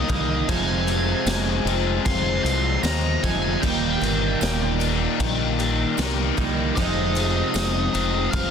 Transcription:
Already playing: D#2 A#2 D#3 G3 A#3 D#4 D#5 G5
0.08 C2 D#2 A#2 D#3 G3 A#3 D#4, kick, crash
0.46 F1 F2 C3 F3 G#3 C4 D#4 F4 G#5, kick, crash
0.87 C3, crash
1.26 F1 G#3, snare, tambourine, crash
1.65 F1 F2 C3 F3 G#3 C4 D#4, crash
2.05 F1 F3 C6, kick, crash
2.44 C2 G#3 C6, crash
2.82 D#2 F2 C3 F3 G#3 C4 D#4 A#5, snare, tambourine, crash
3.23 F1 F2 C3 F3 G#3 C4 D#4 G#5, kick, crash
3.61 D#1 D#2 A#2 D#3 G3 A#3 D#4 D5 G5, kick, crash
4.01 G1 A#2, crash
4.41 D#1 G3, snare, tambourine, crash
4.78 D#2 A#2 D#3 G3 A#3 D#4, crash
5.20 A#1 D#3, kick, crash
5.59 G3, crash
5.96 C2 D#2 A#2 D#3 G3 A#3 D#4, snare, tambourine, crash
6.37 C2 D#2 A#2 D#3 G3 A#3 D#4, kick, crash
6.74 F1 F2 C3 F3 G#3 C4 D#4 D#5 F5, kick, crash
6.79 G#4
7.15 C3, crash
7.54 F1 G#3, snare, tambourine, crash
7.93 F1 F2 C3 F3 G#3 C4 D#4, crash
8.31 F1 F3 F5, kick, crash

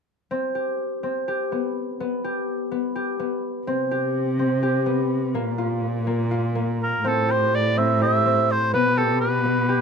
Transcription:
0.31 C4
0.55 G4
1.03 C4
1.28 G4
1.52 B3
2.00 B3
2.24 G4
2.72 B3
2.96 G4
3.20 B3
3.67 C3 C4
3.91 G4
4.39 C4
4.63 G4
4.86 B3
5.35 A#2 A#3
5.58 F4
6.07 A#3
6.31 F4
6.55 A#3
6.83 A#4
7.04 A2 C4 A4
7.29 G4 C5
7.55 D5
7.77 C4 E5
8.02 G4 E5
8.26 C4
8.51 C5
8.74 B2 B3 B4
8.98 G4 A4
9.20 B4
9.45 B3
9.69 G4

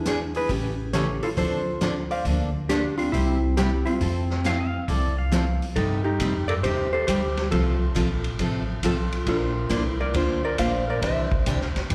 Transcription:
Already playing: E2 D4 E4 G#4
0.05 E3 B3 D4 G#4, snare, closed hi-hat
0.34 G#4 B4, open hi-hat
0.39 E4
0.49 A1 C#3 E3 A3 C#4 G4, kick, open hi-hat
0.93 C#3 E3 A3 C#4 G4 A4 C#5, snare, closed hi-hat
1.22 E4 F4 A4, open hi-hat
1.37 D2 D3 F3 C4 D4 F4 A4 C5, kick, open hi-hat
1.81 D3 F3 C4 D4 A4, snare, closed hi-hat
2.11 C5 D5 F5, open hi-hat
2.25 D2 D3 F3 A#3 D4 A4, kick, open hi-hat
2.68 D3 F3 A#3 D4 G4 A4, snare, closed hi-hat
2.98 C4 D4 F4, open hi-hat
3.12 C2 C3 G3 C4 E4 G4, kick, open hi-hat
3.57 C3 G3 C4 E4 G4, snare, closed hi-hat
3.86 C4 F4, open hi-hat
4.01 F2 F3 C4 E4 A4, kick, open hi-hat
4.30 snare
4.44 F3 C4 E4 A4 F5, snare, closed hi-hat
4.60 F5
4.88 C2 F3 C4 E4 A4 D5, kick, open hi-hat
5.18 F5
5.32 F3 C4 E4 A4, snare, closed hi-hat
5.62 open hi-hat
5.76 G2 C3 G3 C4 D#4 G4 A4, kick, ride
6.04 D#4 G4
6.20 F2 C3 G3 C4 D#4 G4, kick, hi-hat pedal, ride
6.48 A4 A#4 D5, ride
6.63 D#2 C3 G3 C4 D#4 G4 C5, kick, ride
6.93 G4 A4 C5
7.07 D2 C3 G3 C4 D#4 G4 C5, kick, hi-hat pedal, ride
7.37 snare, ride
7.50 C2 C3 F3 C4 F4 A4, kick, ride
7.95 A#1 C3 F3 C4 F4 A4, kick, hi-hat pedal, ride
8.24 ride
8.39 A1 C3 F3 C4 F4 A4, kick, ride
8.83 B1 C3 F3 C4 F4 A4, kick, hi-hat pedal, ride
9.12 ride
9.26 A#1 A#3 D4 F4 A#4 C5, kick, ride
9.69 C2 A#3 D4 F4 C5, kick, hi-hat pedal, ride
9.77 E4
9.82 A4
10.00 A#4 D5
10.14 D2 A#3 D4 F4 C5, kick, ride
10.45 A#4 D5
10.58 A#1 A#3 D4 F4 C5 D5 F5, kick, hi-hat pedal, ride
10.87 A#4 D5
11.01 C2 C3 E3 D4 G4 C5 E5, kick, ride
11.31 kick
11.46 D2 C3 E3 D4 G4, kick, hi-hat pedal, ride
11.61 snare
11.76 muted upright bass stroke, snare, ride
11.90 E2 C3 E3 D4, kick, ride

